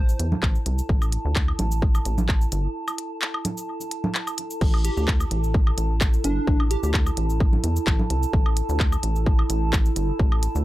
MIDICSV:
0, 0, Header, 1, 5, 480
1, 0, Start_track
1, 0, Tempo, 465116
1, 922, Time_signature, 4, 2, 24, 8
1, 10986, End_track
2, 0, Start_track
2, 0, Title_t, "Ambient pad"
2, 0, Program_c, 0, 92
2, 0, Note_on_c, 0, 64, 91
2, 0, Note_on_c, 0, 69, 80
2, 0, Note_on_c, 0, 81, 74
2, 10986, Note_off_c, 0, 64, 0
2, 10986, Note_off_c, 0, 69, 0
2, 10986, Note_off_c, 0, 81, 0
2, 10986, End_track
3, 0, Start_track
3, 0, Title_t, "Digital synth lead"
3, 0, Program_c, 1, 84
3, 0, Note_on_c, 1, 72, 99
3, 201, Note_off_c, 1, 72, 0
3, 5001, Note_on_c, 1, 67, 87
3, 5084, Note_off_c, 1, 67, 0
3, 5131, Note_on_c, 1, 67, 75
3, 5202, Note_off_c, 1, 67, 0
3, 6441, Note_on_c, 1, 62, 93
3, 6899, Note_off_c, 1, 62, 0
3, 6921, Note_on_c, 1, 67, 87
3, 7004, Note_off_c, 1, 67, 0
3, 7052, Note_on_c, 1, 67, 76
3, 7122, Note_off_c, 1, 67, 0
3, 10986, End_track
4, 0, Start_track
4, 0, Title_t, "Analog synth bass"
4, 0, Program_c, 2, 38
4, 0, Note_on_c, 2, 33, 88
4, 135, Note_off_c, 2, 33, 0
4, 201, Note_on_c, 2, 40, 88
4, 359, Note_off_c, 2, 40, 0
4, 441, Note_on_c, 2, 33, 83
4, 599, Note_off_c, 2, 33, 0
4, 681, Note_on_c, 2, 36, 84
4, 839, Note_off_c, 2, 36, 0
4, 921, Note_on_c, 2, 33, 97
4, 1214, Note_off_c, 2, 33, 0
4, 1290, Note_on_c, 2, 38, 97
4, 1575, Note_off_c, 2, 38, 0
4, 1641, Note_on_c, 2, 33, 89
4, 2056, Note_off_c, 2, 33, 0
4, 2122, Note_on_c, 2, 33, 93
4, 2536, Note_off_c, 2, 33, 0
4, 2601, Note_on_c, 2, 31, 98
4, 2759, Note_off_c, 2, 31, 0
4, 4761, Note_on_c, 2, 33, 98
4, 5054, Note_off_c, 2, 33, 0
4, 5130, Note_on_c, 2, 38, 99
4, 5415, Note_off_c, 2, 38, 0
4, 5480, Note_on_c, 2, 33, 89
4, 5895, Note_off_c, 2, 33, 0
4, 5960, Note_on_c, 2, 33, 98
4, 6375, Note_off_c, 2, 33, 0
4, 6441, Note_on_c, 2, 31, 97
4, 6599, Note_off_c, 2, 31, 0
4, 6682, Note_on_c, 2, 33, 102
4, 6974, Note_off_c, 2, 33, 0
4, 7049, Note_on_c, 2, 38, 102
4, 7335, Note_off_c, 2, 38, 0
4, 7401, Note_on_c, 2, 33, 93
4, 7815, Note_off_c, 2, 33, 0
4, 7881, Note_on_c, 2, 40, 90
4, 8039, Note_off_c, 2, 40, 0
4, 8121, Note_on_c, 2, 33, 83
4, 8279, Note_off_c, 2, 33, 0
4, 8360, Note_on_c, 2, 36, 88
4, 8519, Note_off_c, 2, 36, 0
4, 8600, Note_on_c, 2, 33, 97
4, 8893, Note_off_c, 2, 33, 0
4, 8969, Note_on_c, 2, 38, 101
4, 9255, Note_off_c, 2, 38, 0
4, 9320, Note_on_c, 2, 33, 88
4, 9735, Note_off_c, 2, 33, 0
4, 9800, Note_on_c, 2, 33, 99
4, 10215, Note_off_c, 2, 33, 0
4, 10281, Note_on_c, 2, 31, 97
4, 10439, Note_off_c, 2, 31, 0
4, 10521, Note_on_c, 2, 33, 101
4, 10814, Note_off_c, 2, 33, 0
4, 10890, Note_on_c, 2, 38, 100
4, 10986, Note_off_c, 2, 38, 0
4, 10986, End_track
5, 0, Start_track
5, 0, Title_t, "Drums"
5, 91, Note_on_c, 9, 69, 42
5, 194, Note_off_c, 9, 69, 0
5, 202, Note_on_c, 9, 42, 83
5, 305, Note_off_c, 9, 42, 0
5, 330, Note_on_c, 9, 64, 86
5, 433, Note_off_c, 9, 64, 0
5, 441, Note_on_c, 9, 39, 85
5, 442, Note_on_c, 9, 36, 115
5, 545, Note_off_c, 9, 36, 0
5, 545, Note_off_c, 9, 39, 0
5, 571, Note_on_c, 9, 69, 32
5, 674, Note_off_c, 9, 69, 0
5, 681, Note_on_c, 9, 42, 89
5, 785, Note_off_c, 9, 42, 0
5, 810, Note_on_c, 9, 69, 41
5, 914, Note_off_c, 9, 69, 0
5, 921, Note_on_c, 9, 36, 112
5, 1025, Note_off_c, 9, 36, 0
5, 1050, Note_on_c, 9, 77, 66
5, 1051, Note_on_c, 9, 69, 30
5, 1154, Note_off_c, 9, 69, 0
5, 1154, Note_off_c, 9, 77, 0
5, 1161, Note_on_c, 9, 42, 95
5, 1264, Note_off_c, 9, 42, 0
5, 1401, Note_on_c, 9, 36, 108
5, 1401, Note_on_c, 9, 39, 96
5, 1504, Note_off_c, 9, 39, 0
5, 1505, Note_off_c, 9, 36, 0
5, 1531, Note_on_c, 9, 77, 66
5, 1634, Note_off_c, 9, 77, 0
5, 1640, Note_on_c, 9, 42, 88
5, 1640, Note_on_c, 9, 69, 33
5, 1641, Note_on_c, 9, 64, 82
5, 1744, Note_off_c, 9, 42, 0
5, 1744, Note_off_c, 9, 64, 0
5, 1744, Note_off_c, 9, 69, 0
5, 1770, Note_on_c, 9, 69, 41
5, 1873, Note_off_c, 9, 69, 0
5, 1881, Note_on_c, 9, 36, 119
5, 1984, Note_off_c, 9, 36, 0
5, 2009, Note_on_c, 9, 69, 46
5, 2010, Note_on_c, 9, 77, 67
5, 2113, Note_off_c, 9, 69, 0
5, 2113, Note_off_c, 9, 77, 0
5, 2120, Note_on_c, 9, 42, 87
5, 2120, Note_on_c, 9, 69, 32
5, 2224, Note_off_c, 9, 42, 0
5, 2224, Note_off_c, 9, 69, 0
5, 2250, Note_on_c, 9, 64, 92
5, 2250, Note_on_c, 9, 69, 33
5, 2353, Note_off_c, 9, 64, 0
5, 2353, Note_off_c, 9, 69, 0
5, 2361, Note_on_c, 9, 36, 111
5, 2361, Note_on_c, 9, 39, 92
5, 2464, Note_off_c, 9, 36, 0
5, 2464, Note_off_c, 9, 39, 0
5, 2490, Note_on_c, 9, 69, 34
5, 2593, Note_off_c, 9, 69, 0
5, 2601, Note_on_c, 9, 42, 88
5, 2601, Note_on_c, 9, 69, 44
5, 2704, Note_off_c, 9, 42, 0
5, 2704, Note_off_c, 9, 69, 0
5, 2969, Note_on_c, 9, 77, 70
5, 2970, Note_on_c, 9, 69, 30
5, 3072, Note_off_c, 9, 77, 0
5, 3073, Note_off_c, 9, 69, 0
5, 3080, Note_on_c, 9, 42, 93
5, 3183, Note_off_c, 9, 42, 0
5, 3320, Note_on_c, 9, 39, 97
5, 3424, Note_off_c, 9, 39, 0
5, 3449, Note_on_c, 9, 77, 64
5, 3553, Note_off_c, 9, 77, 0
5, 3560, Note_on_c, 9, 42, 87
5, 3560, Note_on_c, 9, 69, 34
5, 3561, Note_on_c, 9, 64, 81
5, 3663, Note_off_c, 9, 42, 0
5, 3663, Note_off_c, 9, 69, 0
5, 3664, Note_off_c, 9, 64, 0
5, 3688, Note_on_c, 9, 69, 42
5, 3792, Note_off_c, 9, 69, 0
5, 3929, Note_on_c, 9, 69, 46
5, 4032, Note_off_c, 9, 69, 0
5, 4039, Note_on_c, 9, 42, 85
5, 4142, Note_off_c, 9, 42, 0
5, 4169, Note_on_c, 9, 64, 96
5, 4272, Note_off_c, 9, 64, 0
5, 4279, Note_on_c, 9, 39, 95
5, 4383, Note_off_c, 9, 39, 0
5, 4409, Note_on_c, 9, 69, 34
5, 4409, Note_on_c, 9, 77, 52
5, 4512, Note_off_c, 9, 77, 0
5, 4513, Note_off_c, 9, 69, 0
5, 4520, Note_on_c, 9, 42, 92
5, 4623, Note_off_c, 9, 42, 0
5, 4649, Note_on_c, 9, 69, 45
5, 4752, Note_off_c, 9, 69, 0
5, 4760, Note_on_c, 9, 49, 108
5, 4761, Note_on_c, 9, 36, 123
5, 4863, Note_off_c, 9, 49, 0
5, 4864, Note_off_c, 9, 36, 0
5, 4889, Note_on_c, 9, 77, 69
5, 4993, Note_off_c, 9, 77, 0
5, 5001, Note_on_c, 9, 42, 94
5, 5001, Note_on_c, 9, 69, 34
5, 5104, Note_off_c, 9, 42, 0
5, 5104, Note_off_c, 9, 69, 0
5, 5131, Note_on_c, 9, 69, 30
5, 5234, Note_off_c, 9, 69, 0
5, 5241, Note_on_c, 9, 36, 117
5, 5241, Note_on_c, 9, 39, 97
5, 5344, Note_off_c, 9, 36, 0
5, 5344, Note_off_c, 9, 39, 0
5, 5370, Note_on_c, 9, 69, 51
5, 5370, Note_on_c, 9, 77, 69
5, 5473, Note_off_c, 9, 69, 0
5, 5473, Note_off_c, 9, 77, 0
5, 5481, Note_on_c, 9, 42, 89
5, 5584, Note_off_c, 9, 42, 0
5, 5611, Note_on_c, 9, 69, 32
5, 5714, Note_off_c, 9, 69, 0
5, 5721, Note_on_c, 9, 36, 127
5, 5825, Note_off_c, 9, 36, 0
5, 5851, Note_on_c, 9, 77, 70
5, 5954, Note_off_c, 9, 77, 0
5, 5962, Note_on_c, 9, 42, 90
5, 5962, Note_on_c, 9, 69, 30
5, 6065, Note_off_c, 9, 42, 0
5, 6065, Note_off_c, 9, 69, 0
5, 6201, Note_on_c, 9, 36, 127
5, 6202, Note_on_c, 9, 39, 100
5, 6202, Note_on_c, 9, 69, 54
5, 6305, Note_off_c, 9, 36, 0
5, 6305, Note_off_c, 9, 39, 0
5, 6305, Note_off_c, 9, 69, 0
5, 6331, Note_on_c, 9, 69, 33
5, 6435, Note_off_c, 9, 69, 0
5, 6443, Note_on_c, 9, 42, 96
5, 6443, Note_on_c, 9, 69, 33
5, 6546, Note_off_c, 9, 42, 0
5, 6546, Note_off_c, 9, 69, 0
5, 6682, Note_on_c, 9, 36, 124
5, 6785, Note_off_c, 9, 36, 0
5, 6810, Note_on_c, 9, 77, 75
5, 6914, Note_off_c, 9, 77, 0
5, 6922, Note_on_c, 9, 42, 98
5, 6922, Note_on_c, 9, 69, 34
5, 7025, Note_off_c, 9, 42, 0
5, 7025, Note_off_c, 9, 69, 0
5, 7051, Note_on_c, 9, 69, 31
5, 7155, Note_off_c, 9, 69, 0
5, 7162, Note_on_c, 9, 36, 118
5, 7162, Note_on_c, 9, 39, 104
5, 7265, Note_off_c, 9, 36, 0
5, 7265, Note_off_c, 9, 39, 0
5, 7291, Note_on_c, 9, 69, 48
5, 7291, Note_on_c, 9, 77, 71
5, 7394, Note_off_c, 9, 69, 0
5, 7394, Note_off_c, 9, 77, 0
5, 7401, Note_on_c, 9, 42, 98
5, 7504, Note_off_c, 9, 42, 0
5, 7530, Note_on_c, 9, 69, 31
5, 7634, Note_off_c, 9, 69, 0
5, 7642, Note_on_c, 9, 36, 126
5, 7745, Note_off_c, 9, 36, 0
5, 7771, Note_on_c, 9, 64, 85
5, 7875, Note_off_c, 9, 64, 0
5, 7881, Note_on_c, 9, 42, 93
5, 7881, Note_on_c, 9, 69, 29
5, 7984, Note_off_c, 9, 42, 0
5, 7984, Note_off_c, 9, 69, 0
5, 8011, Note_on_c, 9, 69, 43
5, 8114, Note_off_c, 9, 69, 0
5, 8121, Note_on_c, 9, 36, 127
5, 8122, Note_on_c, 9, 39, 96
5, 8224, Note_off_c, 9, 36, 0
5, 8225, Note_off_c, 9, 39, 0
5, 8250, Note_on_c, 9, 64, 101
5, 8353, Note_off_c, 9, 64, 0
5, 8361, Note_on_c, 9, 42, 99
5, 8465, Note_off_c, 9, 42, 0
5, 8492, Note_on_c, 9, 69, 32
5, 8595, Note_off_c, 9, 69, 0
5, 8601, Note_on_c, 9, 36, 122
5, 8704, Note_off_c, 9, 36, 0
5, 8730, Note_on_c, 9, 77, 78
5, 8833, Note_off_c, 9, 77, 0
5, 8841, Note_on_c, 9, 42, 101
5, 8841, Note_on_c, 9, 69, 31
5, 8945, Note_off_c, 9, 42, 0
5, 8945, Note_off_c, 9, 69, 0
5, 8970, Note_on_c, 9, 69, 29
5, 9073, Note_off_c, 9, 69, 0
5, 9081, Note_on_c, 9, 36, 121
5, 9081, Note_on_c, 9, 39, 94
5, 9184, Note_off_c, 9, 36, 0
5, 9184, Note_off_c, 9, 39, 0
5, 9209, Note_on_c, 9, 77, 75
5, 9210, Note_on_c, 9, 69, 50
5, 9313, Note_off_c, 9, 69, 0
5, 9313, Note_off_c, 9, 77, 0
5, 9321, Note_on_c, 9, 42, 98
5, 9424, Note_off_c, 9, 42, 0
5, 9451, Note_on_c, 9, 69, 31
5, 9554, Note_off_c, 9, 69, 0
5, 9561, Note_on_c, 9, 36, 126
5, 9664, Note_off_c, 9, 36, 0
5, 9689, Note_on_c, 9, 77, 74
5, 9793, Note_off_c, 9, 77, 0
5, 9801, Note_on_c, 9, 42, 94
5, 9801, Note_on_c, 9, 69, 28
5, 9904, Note_off_c, 9, 42, 0
5, 9904, Note_off_c, 9, 69, 0
5, 10041, Note_on_c, 9, 36, 127
5, 10041, Note_on_c, 9, 39, 96
5, 10041, Note_on_c, 9, 69, 49
5, 10144, Note_off_c, 9, 36, 0
5, 10144, Note_off_c, 9, 39, 0
5, 10144, Note_off_c, 9, 69, 0
5, 10170, Note_on_c, 9, 69, 30
5, 10273, Note_off_c, 9, 69, 0
5, 10281, Note_on_c, 9, 42, 98
5, 10281, Note_on_c, 9, 69, 33
5, 10384, Note_off_c, 9, 42, 0
5, 10384, Note_off_c, 9, 69, 0
5, 10521, Note_on_c, 9, 36, 123
5, 10625, Note_off_c, 9, 36, 0
5, 10650, Note_on_c, 9, 77, 76
5, 10753, Note_off_c, 9, 77, 0
5, 10761, Note_on_c, 9, 42, 102
5, 10761, Note_on_c, 9, 69, 31
5, 10864, Note_off_c, 9, 42, 0
5, 10864, Note_off_c, 9, 69, 0
5, 10891, Note_on_c, 9, 69, 28
5, 10986, Note_off_c, 9, 69, 0
5, 10986, End_track
0, 0, End_of_file